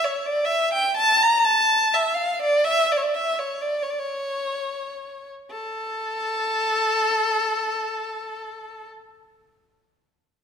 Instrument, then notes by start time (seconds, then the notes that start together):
violin
0.05 C#5
0.26 D5
0.45 E5
0.73 G5
0.97 A5
1.23 A#5
1.45 A5
1.94 E5
2.14 F5
2.42 D5
2.65 E5
2.92 D5
2.97 C#5
3.03 D5
3.15 E5
3.39 C#5
3.62 D5
3.83 C#5
3.90 D5
3.98 C#5
5.51 A4